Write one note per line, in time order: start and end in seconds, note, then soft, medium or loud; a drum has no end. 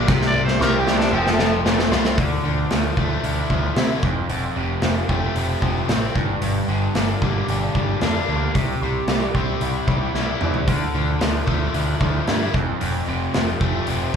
0.07 0.58 C2 medium
0.07 0.32 C3 medium
0.07 0.60 C3 medium
0.07 kick loud
0.07 snare medium
0.21 snare medium
0.28 0.44 D5 loud
0.33 1.12 C3 medium
0.33 1.13 G3 medium
0.45 0.61 C5 medium
0.45 snare medium
0.60 0.86 C2 medium
0.60 1.13 C3 medium
0.60 1.13 C4 medium
0.60 0.81 A#4 loud
0.60 snare medium
0.79 0.99 G4 medium
0.85 1.12 C2 medium
0.85 1.12 G3 medium
0.85 1.13 C4 medium
0.85 snare medium
0.98 1.17 D4 medium
0.98 snare medium
1.13 1.63 F1 medium
1.13 1.38 F3 medium
1.13 1.90 F3 medium
1.13 1.34 C4 medium
1.27 snare medium
1.33 1.57 A3 loud
1.39 2.18 F3 medium
1.39 2.18 A3 medium
1.39 snare medium
1.65 1.91 F1 medium
1.65 2.18 A3 medium
1.65 2.18 C4 medium
1.65 snare loud
1.79 snare medium
1.92 2.17 C2 medium
1.92 2.17 F3 medium
1.92 2.18 F4 medium
1.92 snare loud
2.05 snare loud
2.17 2.36 D2 medium
2.17 2.69 D3 medium
2.17 2.44 D3 medium
2.17 kick loud
2.17 open hi-hat soft
2.44 2.63 D2 medium
2.44 3.23 D3 medium
2.44 2.96 F3 medium
2.71 2.90 D2 medium
2.71 4.03 D3 medium
2.71 3.49 F3 medium
2.71 snare medium
2.71 open hi-hat soft
2.97 3.16 D2 medium
2.97 3.49 F3 medium
2.97 4.04 A3 medium
2.97 kick medium
3.23 3.42 D2 medium
3.23 4.04 D3 medium
3.23 3.76 E4 medium
3.23 open hi-hat soft
3.50 3.69 D2 medium
3.50 4.03 F3 medium
3.50 kick medium
3.76 3.95 C3 medium
3.76 4.03 E4 medium
3.76 4.04 E4 medium
3.76 snare loud
3.76 open hi-hat soft
4.03 4.22 F1 medium
4.03 4.28 F2 medium
4.03 kick medium
4.29 4.48 F1 medium
4.29 5.62 F2 medium
4.29 open hi-hat soft
4.56 4.75 F1 medium
4.56 5.35 C3 medium
4.56 4.82 C3 medium
4.82 5.01 F1 medium
4.82 6.16 C3 medium
4.82 5.61 F3 medium
4.82 snare medium
4.82 open hi-hat soft
5.09 5.28 F1 medium
5.09 5.61 F3 medium
5.09 6.15 A3 medium
5.09 kick medium
5.36 5.54 F1 medium
5.36 6.16 C3 medium
5.36 5.88 C4 medium
5.36 open hi-hat soft
5.62 5.81 F1 medium
5.62 6.15 F3 medium
5.62 6.16 F3 medium
5.62 kick medium
5.88 6.08 A1 medium
5.88 6.15 C4 medium
5.88 6.16 C4 medium
5.88 snare loud
5.88 open hi-hat soft
6.15 6.34 G1 medium
6.15 6.41 G2 medium
6.15 kick medium
6.42 6.60 G1 medium
6.42 7.75 G2 medium
6.42 open hi-hat soft
6.68 6.87 G1 medium
6.68 7.49 D3 medium
6.68 6.94 D3 medium
6.95 7.14 G1 medium
6.95 8.28 D3 medium
6.95 7.75 G3 medium
6.95 snare medium
6.95 open hi-hat soft
7.22 7.41 G1 medium
7.22 7.74 G3 medium
7.22 8.55 A#3 medium
7.22 kick medium
7.48 7.67 G1 medium
7.48 8.55 D3 medium
7.48 8.01 D4 medium
7.48 open hi-hat soft
7.75 7.94 G1 medium
7.75 8.55 G3 medium
7.75 8.29 G3 medium
7.75 kick medium
8.01 8.21 F2 medium
8.01 8.55 D4 medium
8.01 snare medium
8.01 open hi-hat soft
8.28 8.47 D2 medium
8.28 8.56 G3 medium
8.28 8.55 A#3 medium
8.55 8.74 C2 medium
8.55 8.81 C3 medium
8.55 9.07 C3 medium
8.55 kick medium
8.55 open hi-hat soft
8.82 9.00 C2 medium
8.82 9.61 C3 medium
8.82 9.34 G3 medium
9.08 9.26 C2 medium
9.08 10.41 C3 medium
9.08 9.87 G3 medium
9.08 snare loud
9.08 open hi-hat soft
9.35 9.53 C2 medium
9.35 9.87 G3 medium
9.35 10.68 C4 medium
9.35 kick medium
9.61 9.80 C2 medium
9.61 10.67 C3 medium
9.61 10.14 E4 medium
9.61 open hi-hat soft
9.87 10.06 C2 medium
9.87 10.68 G3 medium
9.87 10.40 G3 medium
9.87 kick medium
10.14 10.33 C2 medium
10.14 10.68 E4 medium
10.14 snare soft
10.41 10.60 E2 medium
10.41 10.68 G3 medium
10.41 10.68 C4 medium
10.41 mid tom medium
10.54 floor tom medium
10.68 10.86 D2 medium
10.68 11.20 D3 medium
10.68 10.93 D3 medium
10.68 kick medium
10.68 open hi-hat soft
10.95 11.13 D2 medium
10.95 11.73 D3 medium
10.95 11.46 F3 medium
11.21 11.40 D2 medium
11.21 12.54 D3 medium
11.21 11.99 F3 medium
11.21 snare loud
11.21 open hi-hat soft
11.47 11.66 D2 medium
11.47 12.00 F3 medium
11.47 12.54 A3 medium
11.47 kick medium
11.74 11.93 D2 medium
11.74 12.54 D3 medium
11.74 12.27 E4 medium
11.74 open hi-hat soft
12.00 12.20 D2 medium
12.00 12.54 F3 medium
12.00 kick medium
12.28 12.47 G2 medium
12.28 12.54 E4 medium
12.28 snare medium
12.28 open hi-hat soft
12.54 12.73 F1 medium
12.54 12.79 F2 medium
12.54 kick medium
12.81 13.00 F1 medium
12.81 14.14 F2 medium
12.81 open hi-hat soft
13.07 13.27 F1 medium
13.07 13.33 C3 medium
13.07 13.86 C3 medium
13.34 13.54 F1 medium
13.34 14.16 C3 medium
13.34 14.13 F3 medium
13.34 snare loud
13.34 open hi-hat soft
13.61 13.80 F1 medium
13.61 14.12 F3 medium
13.61 14.16 A3 medium
13.61 kick medium
13.87 14.06 F1 medium
13.87 14.16 C3 medium
13.87 14.16 C4 medium
13.87 open hi-hat soft